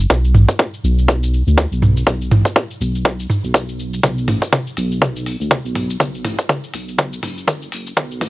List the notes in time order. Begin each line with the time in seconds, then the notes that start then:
0.00 cabasa
0.10 B1, kick, cabasa
0.25 cabasa
0.35 A1, mid tom, cabasa
0.49 kick, cabasa
0.59 kick, cabasa
0.74 cabasa
0.84 B1, cabasa
0.99 cabasa
1.08 kick, cabasa
1.23 cabasa
1.34 cabasa
1.47 D2, cabasa
1.58 kick, cabasa
1.72 B1, cabasa
1.82 mid tom, cabasa
1.97 cabasa
2.07 B1, kick, cabasa
2.22 cabasa
2.31 A1, mid tom, cabasa
2.45 kick, cabasa
2.56 kick, cabasa
2.71 cabasa
2.81 B1, cabasa
2.95 cabasa
3.05 kick, cabasa
3.20 cabasa
3.30 mid tom, cabasa
3.44 B1, cabasa
3.54 kick, cabasa
3.69 cabasa
3.80 cabasa
3.94 cabasa
4.03 B1, kick, mid tom, cabasa
4.18 cabasa
4.28 A1, mid tom, open hi-hat, cabasa
4.42 kick, cabasa
4.53 kick, mid tom, cabasa
4.67 cabasa
4.77 B1, open hi-hat, cabasa
4.92 cabasa
5.02 kick, mid tom, cabasa
5.16 cabasa
5.26 open hi-hat, cabasa
5.40 D2, cabasa
5.51 kick, mid tom, cabasa
5.65 B1, cabasa
5.76 mid tom, open hi-hat, cabasa
5.90 cabasa
6.00 B1, kick, mid tom, cabasa
6.15 cabasa
6.25 A1, mid tom, open hi-hat, cabasa
6.39 kick, cabasa
6.49 kick, mid tom, cabasa
6.64 cabasa
6.74 B1, open hi-hat, cabasa
6.88 cabasa
6.98 kick, mid tom, cabasa
7.13 cabasa
7.23 F#1, mid tom, open hi-hat, cabasa
7.38 cabasa
7.47 kick, mid tom, cabasa
7.62 cabasa
7.72 F#1, open hi-hat, cabasa
7.87 cabasa
7.97 B1, kick, mid tom, cabasa
8.11 cabasa
8.21 A1, mid tom, open hi-hat, cabasa